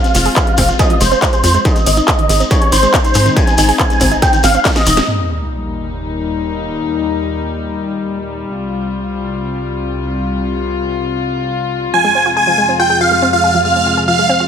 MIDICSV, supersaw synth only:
0, 0, Header, 1, 2, 480
1, 0, Start_track
1, 0, Key_signature, -4, "minor"
1, 0, Tempo, 428571
1, 1849, Time_signature, 4, 2, 24, 8
1, 16216, End_track
2, 0, Start_track
2, 0, Title_t, "Supersaw synth"
2, 0, Program_c, 0, 81
2, 0, Note_on_c, 0, 77, 99
2, 304, Note_off_c, 0, 77, 0
2, 407, Note_on_c, 0, 77, 91
2, 785, Note_off_c, 0, 77, 0
2, 887, Note_on_c, 0, 75, 84
2, 1076, Note_off_c, 0, 75, 0
2, 1128, Note_on_c, 0, 72, 98
2, 1411, Note_off_c, 0, 72, 0
2, 1487, Note_on_c, 0, 72, 97
2, 1770, Note_off_c, 0, 72, 0
2, 1847, Note_on_c, 0, 75, 98
2, 2225, Note_off_c, 0, 75, 0
2, 2326, Note_on_c, 0, 75, 97
2, 2704, Note_off_c, 0, 75, 0
2, 2809, Note_on_c, 0, 73, 85
2, 2997, Note_off_c, 0, 73, 0
2, 3051, Note_on_c, 0, 72, 100
2, 3332, Note_off_c, 0, 72, 0
2, 3408, Note_on_c, 0, 72, 95
2, 3691, Note_off_c, 0, 72, 0
2, 3766, Note_on_c, 0, 80, 103
2, 4144, Note_off_c, 0, 80, 0
2, 4248, Note_on_c, 0, 80, 97
2, 4625, Note_off_c, 0, 80, 0
2, 4727, Note_on_c, 0, 79, 88
2, 4916, Note_off_c, 0, 79, 0
2, 4968, Note_on_c, 0, 77, 97
2, 5251, Note_off_c, 0, 77, 0
2, 5328, Note_on_c, 0, 75, 99
2, 5611, Note_off_c, 0, 75, 0
2, 13369, Note_on_c, 0, 80, 96
2, 13745, Note_off_c, 0, 80, 0
2, 13850, Note_on_c, 0, 80, 93
2, 14226, Note_off_c, 0, 80, 0
2, 14331, Note_on_c, 0, 79, 84
2, 14518, Note_off_c, 0, 79, 0
2, 14569, Note_on_c, 0, 77, 92
2, 14851, Note_off_c, 0, 77, 0
2, 14931, Note_on_c, 0, 77, 93
2, 15212, Note_off_c, 0, 77, 0
2, 15288, Note_on_c, 0, 77, 96
2, 15665, Note_off_c, 0, 77, 0
2, 15768, Note_on_c, 0, 77, 93
2, 16145, Note_off_c, 0, 77, 0
2, 16216, End_track
0, 0, End_of_file